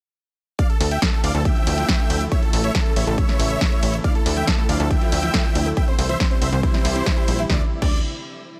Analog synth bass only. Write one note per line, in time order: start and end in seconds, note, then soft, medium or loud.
0.80 0.98 D2 loud
1.24 1.33 D2 medium
1.34 1.52 D2 loud
1.67 1.85 D2 medium
2.10 2.28 D2 medium
2.53 2.71 A1 loud
2.96 3.05 A1 medium
3.07 3.25 A1 loud
3.39 3.57 A1 loud
3.83 4.01 A1 medium
4.26 4.44 D2 loud
4.69 4.78 D2 medium
4.80 4.98 D2 loud
5.12 5.30 D2 loud
5.55 5.73 D2 medium
5.99 6.16 C2 loud
6.42 6.51 C2 medium
6.52 6.70 C2 loud
6.85 7.03 C2 loud
7.28 7.46 A#1 medium
7.50 7.62 D2 loud
7.82 8.02 D2 loud